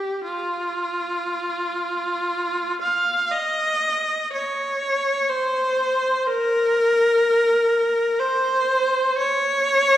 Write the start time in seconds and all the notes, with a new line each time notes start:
Already playing: G4
0.24 F4
2.82 F5
3.31 D#5
4.33 C#5
5.29 C5
6.27 A#4
8.20 C5
9.18 C#5